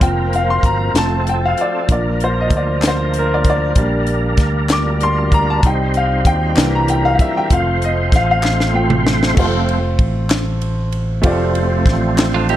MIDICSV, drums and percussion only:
0, 0, Header, 1, 2, 480
1, 0, Start_track
1, 0, Tempo, 624350
1, 8, Time_signature, 6, 3, 24, 8
1, 9661, End_track
2, 0, Start_track
2, 0, Title_t, "Drums"
2, 10, Note_on_c, 9, 36, 98
2, 10, Note_on_c, 9, 42, 74
2, 86, Note_off_c, 9, 36, 0
2, 87, Note_off_c, 9, 42, 0
2, 253, Note_on_c, 9, 42, 46
2, 330, Note_off_c, 9, 42, 0
2, 485, Note_on_c, 9, 36, 76
2, 492, Note_on_c, 9, 42, 49
2, 562, Note_off_c, 9, 36, 0
2, 569, Note_off_c, 9, 42, 0
2, 732, Note_on_c, 9, 42, 83
2, 736, Note_on_c, 9, 38, 92
2, 809, Note_off_c, 9, 42, 0
2, 813, Note_off_c, 9, 38, 0
2, 975, Note_on_c, 9, 42, 52
2, 1051, Note_off_c, 9, 42, 0
2, 1211, Note_on_c, 9, 42, 46
2, 1288, Note_off_c, 9, 42, 0
2, 1451, Note_on_c, 9, 36, 94
2, 1451, Note_on_c, 9, 42, 78
2, 1528, Note_off_c, 9, 36, 0
2, 1528, Note_off_c, 9, 42, 0
2, 1694, Note_on_c, 9, 42, 46
2, 1771, Note_off_c, 9, 42, 0
2, 1924, Note_on_c, 9, 42, 50
2, 1926, Note_on_c, 9, 36, 83
2, 2001, Note_off_c, 9, 42, 0
2, 2003, Note_off_c, 9, 36, 0
2, 2166, Note_on_c, 9, 39, 89
2, 2176, Note_on_c, 9, 42, 91
2, 2180, Note_on_c, 9, 38, 105
2, 2243, Note_off_c, 9, 39, 0
2, 2253, Note_off_c, 9, 42, 0
2, 2257, Note_off_c, 9, 38, 0
2, 2411, Note_on_c, 9, 42, 54
2, 2488, Note_off_c, 9, 42, 0
2, 2647, Note_on_c, 9, 42, 51
2, 2650, Note_on_c, 9, 36, 76
2, 2724, Note_off_c, 9, 42, 0
2, 2726, Note_off_c, 9, 36, 0
2, 2887, Note_on_c, 9, 42, 75
2, 2889, Note_on_c, 9, 36, 86
2, 2964, Note_off_c, 9, 42, 0
2, 2966, Note_off_c, 9, 36, 0
2, 3126, Note_on_c, 9, 42, 46
2, 3203, Note_off_c, 9, 42, 0
2, 3362, Note_on_c, 9, 42, 52
2, 3364, Note_on_c, 9, 36, 82
2, 3371, Note_on_c, 9, 38, 36
2, 3438, Note_off_c, 9, 42, 0
2, 3441, Note_off_c, 9, 36, 0
2, 3448, Note_off_c, 9, 38, 0
2, 3606, Note_on_c, 9, 39, 93
2, 3610, Note_on_c, 9, 42, 92
2, 3614, Note_on_c, 9, 38, 99
2, 3683, Note_off_c, 9, 39, 0
2, 3687, Note_off_c, 9, 42, 0
2, 3690, Note_off_c, 9, 38, 0
2, 3848, Note_on_c, 9, 42, 55
2, 3925, Note_off_c, 9, 42, 0
2, 4088, Note_on_c, 9, 36, 79
2, 4090, Note_on_c, 9, 42, 49
2, 4165, Note_off_c, 9, 36, 0
2, 4167, Note_off_c, 9, 42, 0
2, 4328, Note_on_c, 9, 42, 81
2, 4329, Note_on_c, 9, 36, 93
2, 4404, Note_off_c, 9, 42, 0
2, 4406, Note_off_c, 9, 36, 0
2, 4566, Note_on_c, 9, 42, 46
2, 4643, Note_off_c, 9, 42, 0
2, 4805, Note_on_c, 9, 36, 83
2, 4805, Note_on_c, 9, 42, 55
2, 4882, Note_off_c, 9, 36, 0
2, 4882, Note_off_c, 9, 42, 0
2, 5046, Note_on_c, 9, 39, 91
2, 5055, Note_on_c, 9, 42, 90
2, 5059, Note_on_c, 9, 38, 106
2, 5123, Note_off_c, 9, 39, 0
2, 5132, Note_off_c, 9, 42, 0
2, 5136, Note_off_c, 9, 38, 0
2, 5291, Note_on_c, 9, 42, 61
2, 5368, Note_off_c, 9, 42, 0
2, 5529, Note_on_c, 9, 36, 82
2, 5531, Note_on_c, 9, 42, 54
2, 5606, Note_off_c, 9, 36, 0
2, 5608, Note_off_c, 9, 42, 0
2, 5768, Note_on_c, 9, 42, 80
2, 5770, Note_on_c, 9, 36, 97
2, 5845, Note_off_c, 9, 42, 0
2, 5847, Note_off_c, 9, 36, 0
2, 6011, Note_on_c, 9, 42, 49
2, 6088, Note_off_c, 9, 42, 0
2, 6244, Note_on_c, 9, 36, 86
2, 6248, Note_on_c, 9, 42, 56
2, 6258, Note_on_c, 9, 38, 33
2, 6321, Note_off_c, 9, 36, 0
2, 6325, Note_off_c, 9, 42, 0
2, 6335, Note_off_c, 9, 38, 0
2, 6481, Note_on_c, 9, 39, 96
2, 6497, Note_on_c, 9, 38, 55
2, 6558, Note_off_c, 9, 39, 0
2, 6574, Note_off_c, 9, 38, 0
2, 6614, Note_on_c, 9, 38, 56
2, 6691, Note_off_c, 9, 38, 0
2, 6843, Note_on_c, 9, 45, 77
2, 6920, Note_off_c, 9, 45, 0
2, 6970, Note_on_c, 9, 38, 92
2, 7047, Note_off_c, 9, 38, 0
2, 7094, Note_on_c, 9, 38, 78
2, 7171, Note_off_c, 9, 38, 0
2, 7202, Note_on_c, 9, 49, 90
2, 7205, Note_on_c, 9, 36, 92
2, 7279, Note_off_c, 9, 49, 0
2, 7282, Note_off_c, 9, 36, 0
2, 7446, Note_on_c, 9, 51, 40
2, 7523, Note_off_c, 9, 51, 0
2, 7679, Note_on_c, 9, 36, 87
2, 7679, Note_on_c, 9, 51, 46
2, 7756, Note_off_c, 9, 36, 0
2, 7756, Note_off_c, 9, 51, 0
2, 7917, Note_on_c, 9, 39, 88
2, 7922, Note_on_c, 9, 51, 73
2, 7926, Note_on_c, 9, 38, 106
2, 7994, Note_off_c, 9, 39, 0
2, 7999, Note_off_c, 9, 51, 0
2, 8003, Note_off_c, 9, 38, 0
2, 8160, Note_on_c, 9, 51, 46
2, 8237, Note_off_c, 9, 51, 0
2, 8398, Note_on_c, 9, 51, 47
2, 8475, Note_off_c, 9, 51, 0
2, 8636, Note_on_c, 9, 51, 74
2, 8640, Note_on_c, 9, 36, 100
2, 8713, Note_off_c, 9, 51, 0
2, 8717, Note_off_c, 9, 36, 0
2, 8880, Note_on_c, 9, 51, 45
2, 8957, Note_off_c, 9, 51, 0
2, 9115, Note_on_c, 9, 36, 87
2, 9123, Note_on_c, 9, 51, 49
2, 9133, Note_on_c, 9, 38, 38
2, 9192, Note_off_c, 9, 36, 0
2, 9200, Note_off_c, 9, 51, 0
2, 9210, Note_off_c, 9, 38, 0
2, 9363, Note_on_c, 9, 39, 98
2, 9366, Note_on_c, 9, 51, 82
2, 9370, Note_on_c, 9, 38, 107
2, 9440, Note_off_c, 9, 39, 0
2, 9443, Note_off_c, 9, 51, 0
2, 9447, Note_off_c, 9, 38, 0
2, 9602, Note_on_c, 9, 51, 48
2, 9661, Note_off_c, 9, 51, 0
2, 9661, End_track
0, 0, End_of_file